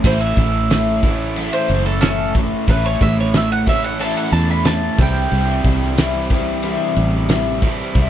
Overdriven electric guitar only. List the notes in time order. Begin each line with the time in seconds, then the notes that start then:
0.04 A2 E3 A3 C#4 E4
1.03 A2 E3 A3 C#4 E4
2.67 A2 E3 A3 C#4 E4
3.66 A2 E3 A3 C#4 E4
4.98 C3 E3 G3 C4 E4
5.96 C3 E3 G3 C4 E4
7.62 C3 E3 G3 C4 E4